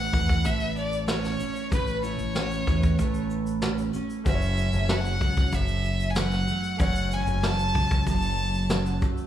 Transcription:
Already playing: A3 E4 B4 F#5
0.13 E2 B4, kick, shaker
0.29 kick, shaker
0.44 A1 A3 E5, kick, shaker
0.60 shaker
0.76 D5, shaker
0.93 shaker
1.08 C#4 C#5, snare, shaker
1.24 snare, shaker
1.40 C#4, shaker
1.56 shaker
1.72 A1 A3 B4, kick, shaker
1.87 shaker
2.03 E4 C#5, shaker
2.19 A1, shaker
2.35 C#4, snare, shaker
2.51 shaker
2.67 E2 B4, kick, shaker
2.83 kick, shaker
2.98 A1 A3, kick, shaker
3.14 shaker
3.30 shaker
3.47 shaker
3.62 C#4, snare, shaker
3.78 shaker
3.93 C#4, shaker
4.10 shaker
4.24 F#1 F#2 A3 C#4 F#4 A4 C5 E5, kick, shaker
4.34 C#5
4.42 shaker
4.57 C#4, shaker
4.73 F#1, shaker
4.89 F#3 F#5, snare, shaker
5.05 shaker
5.20 C#2 A4, kick, shaker
5.37 kick, shaker
5.52 F#1 F#2 E5, kick, shaker
5.68 shaker
5.84 shaker
6.00 shaker
6.01 shaker
6.10 G#5
6.15 F#3 F#5, snare, shaker
6.31 snare, shaker
6.47 A3, shaker
6.64 shaker
6.77 F#1 F#2 A3 C#4 F#4 A4 F#5, kick, shaker
6.81 C#5
6.95 shaker
7.11 C#4 G#5, shaker
7.27 F#1, shaker
7.43 F#3 A5, snare, shaker
7.59 shaker
7.75 C#2 A4, kick, shaker
7.91 kick, shaker
8.06 F#1 F#2 A5, kick, shaker
8.22 shaker
8.38 shaker
8.54 shaker
8.70 F#3, snare, shaker
8.86 shaker
9.02 A3, kick, shaker
9.17 shaker

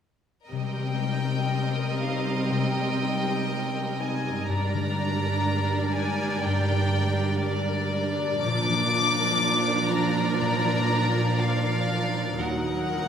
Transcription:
0.50 C3 G3 C4 A#4 D#5 G5
0.76 G3
1.01 D#4
1.26 C5
1.51 D#5
1.76 A#4
2.02 D#4 F5
2.27 C4
2.51 C3 G5
2.76 G3
3.01 D#4
3.24 C5
3.49 D#5
3.74 A#4
3.99 D#4 G#5
4.25 C4
4.47 G2 G3 D4 A#4 D5 A#5
4.73 D3
4.98 D4
5.23 A#4
5.48 D5
5.73 A#4
5.94 D4 G#5
6.21 A#3
6.43 G2 G5
6.70 D3
6.94 D4
7.19 A#4
7.41 D5
7.67 A#4
7.93 D4
8.18 A#3
8.42 A#2 F3 D4 A#4 D5 D6
8.69 F3
8.95 D4
9.19 A#4
9.43 D5
9.67 A#4
9.90 D4 A#5
10.15 A#3
10.38 A#2 A#5
10.64 F3
10.89 D4
11.13 A#4
11.38 D5 F5
11.63 A#4
11.88 D4
12.12 A#3
12.38 D#2 F#3 D#4 A#4 F#5
12.65 A#3
12.92 A#4

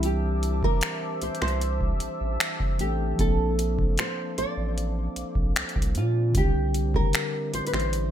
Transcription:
Already playing: C2 E3 G3 C4 D4 G4 C5 E5 A5 D6
0.03 G4, closed hi-hat
0.43 closed hi-hat
0.63 A#4, kick
0.81 finger snap, closed hi-hat
1.22 C2 C5 E6, closed hi-hat
1.35 closed hi-hat
1.42 C2 C5, finger snap
1.48 closed hi-hat
1.61 closed hi-hat
1.81 kick
2.00 A1, closed hi-hat
2.21 A1
2.40 finger snap, closed hi-hat
2.60 kick
2.79 A1 E3 A3 C4 D4 G4, closed hi-hat
2.83 A4
3.16 A#1 F3 A#3 F5 D6, kick, closed hi-hat
3.20 C4 D4 A4
3.24 A4
3.59 closed hi-hat
3.79 kick
3.98 C5, finger snap, closed hi-hat
4.38 A1 D5, closed hi-hat
4.57 A1
4.78 closed hi-hat
5.16 A#1, closed hi-hat
5.35 A#1, kick
5.46 C5
5.56 C2, finger snap, closed hi-hat
5.69 closed hi-hat
5.76 C2, kick
5.82 closed hi-hat
5.95 A#2 F4, closed hi-hat
6.32 C2 D3 G3 C4 E5 D6, kick, closed hi-hat
6.37 D3 D4 G4
6.74 closed hi-hat
6.94 A#4, kick
7.13 finger snap, closed hi-hat
7.53 A1 C5, closed hi-hat
7.67 B4, closed hi-hat
7.73 A1 C5, finger snap
7.80 closed hi-hat
7.93 closed hi-hat

